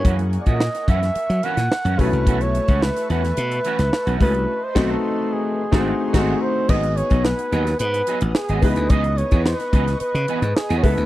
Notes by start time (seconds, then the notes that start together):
Already playing: A#3 C#4 E4 G#4 A#4 C#5 F#5 G#5 C#6
0.04 F#2 E3 A#3 C#4 F#4, kick, closed hi-hat
0.18 muted clean electric guitar stroke, closed hi-hat
0.32 muted clean electric guitar stroke, closed hi-hat
0.41 D5
0.46 A#2 E3 A#3 C#4 F#4 D#5, kick, closed hi-hat
0.60 snare
0.74 muted clean electric guitar stroke, snare, closed hi-hat
0.87 F#2 E3 A#3 C#4 F#4 E5, kick, closed hi-hat
1.02 muted clean electric guitar stroke, snare, closed hi-hat
1.15 muted slap bass stroke, closed hi-hat
1.30 F#3, muted clean electric guitar stroke, closed hi-hat
1.43 E3 A#3 C#4 F#4 F#5, closed hi-hat
1.57 A#2, muted clean electric guitar stroke, snare, closed hi-hat
1.71 muted clean electric guitar stroke, snare
1.85 F#2 E3 A#3 C#4 F#4, closed hi-hat
1.98 B1 E3 A3 C#4 D#4 F#4 G#4 B4 E5 A5, kick, open hi-hat
2.06 E4
2.12 C2, muted clean electric guitar stroke, closed hi-hat
2.27 B1 E3 A3 C#4 F#4, kick, closed hi-hat
2.41 C#5, muted clean electric guitar stroke, closed hi-hat
2.55 muted clean electric guitar stroke, closed hi-hat
2.68 C#2 E3 A3 C#4 F#4, kick, closed hi-hat
2.82 B4, snare
2.96 muted clean electric guitar stroke, snare, closed hi-hat
3.09 E2 E3 A3 C#4 F#4 B4, closed hi-hat
3.24 muted clean electric guitar stroke, snare, closed hi-hat
3.37 B2, closed hi-hat
3.51 muted clean electric guitar stroke, closed hi-hat
3.64 E3 A3 C#4 F#4, closed hi-hat
3.79 C#2, muted clean electric guitar stroke, snare, closed hi-hat
3.93 muted clean electric guitar stroke, snare
4.06 B1 E3 A3 C#4 F#4, closed hi-hat
4.20 C#2 E3 A3 C#4 E4 F#4 G#4 B4, kick, open hi-hat
4.34 C2, muted clean electric guitar stroke, closed hi-hat
4.49 B4 D#5 C6
4.64 C5
4.75 B1 D#3 A3 C4 D#4 F#4, kick, snare, crash
4.91 A4
5.33 G#4
5.59 A3 F#5 G#5 C6
5.71 G#1 D#3 A3 C4 D#4 F#4, kick, snare
5.79 C4
6.13 G#1 D#3 A3 C4 D#4 F#4 G#4, kick, snare, crash
6.20 C4
6.42 C5
6.68 G#1 F#3 B3 D#4 F#4 G#4 B4 D#5 F#5 G#5 D#6, kick, crash
6.83 muted clean electric guitar stroke, closed hi-hat
6.96 C#5, muted clean electric guitar stroke, closed hi-hat
7.10 B1 F#3 B3 D#4 G#4, kick, closed hi-hat
7.25 B4, snare
7.38 muted clean electric guitar stroke, closed hi-hat
7.51 D#2 F#3 B3 D#4 G#4, closed hi-hat
7.66 muted clean electric guitar stroke, snare, closed hi-hat
7.79 G#2 B4, closed hi-hat
7.93 muted clean electric guitar stroke, closed hi-hat
8.07 F#3 B3 D#4 G#4, closed hi-hat
8.21 A1, muted clean electric guitar stroke, closed hi-hat
8.35 G#4, muted clean electric guitar stroke, snare
8.49 G#1 F#3 B3 D#4 G#4, closed hi-hat
8.62 C#2 E3 B3 D#4 E4 G#4 B4 D#5 C#6, kick, open hi-hat
8.76 D2, muted clean electric guitar stroke, closed hi-hat
8.90 C#2 E3 B3 D#4 G#4 D#5, kick, closed hi-hat
9.04 muted clean electric guitar stroke, closed hi-hat
9.18 C#5, muted clean electric guitar stroke, closed hi-hat
9.31 E2 E3 B3 D#4 G#4, kick, closed hi-hat
9.45 B4, snare
9.59 muted clean electric guitar stroke, snare, closed hi-hat
9.73 C#2 E3 B3 D#4 G#4, kick, closed hi-hat
9.87 muted clean electric guitar stroke, snare, closed hi-hat
10.00 B4, closed hi-hat
10.14 C#3, muted clean electric guitar stroke, closed hi-hat
10.28 E3 B3 D#4 G#4, closed hi-hat
10.42 G#2, muted clean electric guitar stroke, closed hi-hat
10.56 G#4, muted clean electric guitar stroke, snare
10.69 E2 E3 B3 D#4 G#4, closed hi-hat
10.77 C#5
10.83 C#2 A3 B3 E4 G#4 A4 B4 G#5 B5 E6, kick, open hi-hat
10.97 D2, muted clean electric guitar stroke, closed hi-hat